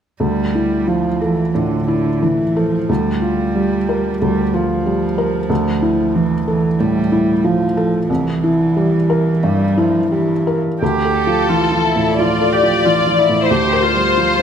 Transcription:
0.20 D2 G3
0.55 E4
0.87 F3
1.22 E3 A4
1.55 A2 D3
1.88 D3 E4
2.22 E3
2.57 F3 A4
2.89 D2 G3
3.22 F4
3.55 G3
3.89 A#4
4.22 D2 G3
4.53 F3 F4
4.86 G3
5.18 A#4
5.50 D2
5.82 E4
6.15 E3
6.47 E3 A4
6.79 A2 G3
7.12 E4
7.44 F3
7.77 A4
8.09 C2 E3
8.44 E4
8.76 G3
9.10 A#4
9.43 G2 G3
9.78 F3 E4
10.11 E3 G3
10.47 A#4
10.82 D2 G4
11.05 A4
11.15 A4
11.27 F3
11.49 E3 F4
11.72 F3
11.85 E4
11.96 A2
12.17 F3 F4 D5
12.41 A4
12.53 G4
12.63 F3
12.85 E3 F4
13.07 F3
13.18 E4
13.29 A2
13.48 D2 G4 C5
13.73 A#4
13.83 F4
13.95 G3
14.17 F3
14.39 G3

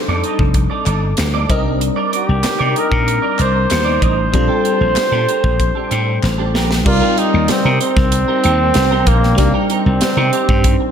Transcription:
Already playing: G3 C4 D4 D#4 A4
0.08 F2 D#4 A4 D5
0.23 D#4 A4 D#5, closed hi-hat
0.39 F1, muted clean electric guitar stroke, kick
0.54 muted clean electric guitar stroke, kick, closed hi-hat
0.70 D#4 A4 D5
0.86 G1 D#4 A4 D5, clap, closed hi-hat
1.02 muted clean electric guitar stroke
1.17 D2, muted clean electric guitar stroke, snare, clap, closed hi-hat
1.34 D#4 A4 D5
1.49 C2 G3 C4 D4 D#4 A#4 D#5, kick, closed hi-hat
1.65 muted clean electric guitar stroke
1.80 muted clean electric guitar stroke, closed hi-hat
1.96 D#4 A#4 D5
2.12 D#4 A#4 D5, closed hi-hat
2.16 G4
2.28 C2, muted clean electric guitar stroke
2.43 muted clean electric guitar stroke, snare, clap, closed hi-hat
2.59 C3 D#4 A#4 D5
2.75 D#4 A#4 D#5, closed hi-hat
2.79 A#4
2.91 A#2, muted clean electric guitar stroke, kick
3.06 muted clean electric guitar stroke, closed hi-hat
3.22 D#4 A#4 D5
3.38 C2 D#4 A#4 C5 D5, clap, closed hi-hat
3.54 muted clean electric guitar stroke
3.69 D#2, muted clean electric guitar stroke, snare, clap, closed hi-hat
3.85 D#4 A#4 D5
4.00 A1 D#4 A#4 C5 D#5, kick, closed hi-hat
4.17 muted clean electric guitar stroke
4.32 A#1 G3 C4 D4 F4 A4, muted clean electric guitar stroke, kick, closed hi-hat
4.48 D4 G4 A4
4.64 D4 G4 A4, closed hi-hat
4.80 A#1, muted clean electric guitar stroke
4.96 muted clean electric guitar stroke, muted slap bass stroke, snare, clap, closed hi-hat
5.12 A#2 D4 G4 A4
5.28 D4 G4 A#4, closed hi-hat
5.44 A#1, muted clean electric guitar stroke, kick
5.60 muted clean electric guitar stroke, kick, closed hi-hat
5.75 D4 G4 A4
5.91 A2 D4 G4 A4, clap, closed hi-hat
6.07 muted clean electric guitar stroke
6.23 A1, muted clean electric guitar stroke, snare, clap
6.38 D4 G4 A4
6.54 A#1 D4 G4 A#4, snare
6.70 muted clean electric guitar stroke, snare
6.85 C2 G3 C4 D#4 F4 A#4 D5, muted clean electric guitar stroke, kick, crash
7.01 D#4 G4 A#4
7.18 D#4 G4 A#4, closed hi-hat
7.33 D#2, muted clean electric guitar stroke
7.48 C4, muted clean electric guitar stroke, muted slap bass stroke, snare, closed hi-hat
7.65 C3 D#4 G4 A#4
7.80 C4 D#4 G4 C5, closed hi-hat
7.97 C2, muted clean electric guitar stroke, kick, snare
8.12 muted clean electric guitar stroke, closed hi-hat
8.28 D#4 G4 A#4
8.44 D#2 D#4 G4 A#4, closed hi-hat
8.60 muted clean electric guitar stroke
8.74 C2, muted clean electric guitar stroke, snare, closed hi-hat
8.91 D#4 G4 A#4
9.07 A#1 A#3 D#4 G4 C5, kick, closed hi-hat
9.22 muted clean electric guitar stroke, snare
9.37 C2 G3 A#3 C4 D4 D#4 G4, muted clean electric guitar stroke, kick, closed hi-hat
9.54 D#4 G4 A#4
9.69 C4 D#4 G4 A#4, closed hi-hat
9.85 C2, muted clean electric guitar stroke
10.01 muted clean electric guitar stroke, snare, closed hi-hat
10.17 C3 D#4 G4 A#4
10.33 D#4 G4 C5, closed hi-hat
10.48 G2, muted clean electric guitar stroke, kick
10.64 muted clean electric guitar stroke, kick, closed hi-hat
10.80 muted clean electric guitar stroke

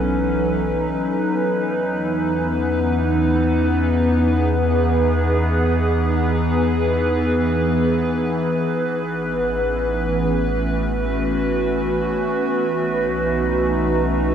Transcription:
Already playing: B1 E3 F#3 B3 C#4 D#4 A4 B4
1.31 E2 E3
1.63 B3
3.39 G#4
8.82 A1
9.14 C#4
9.63 A3
10.24 F#4
12.56 B1 D#4

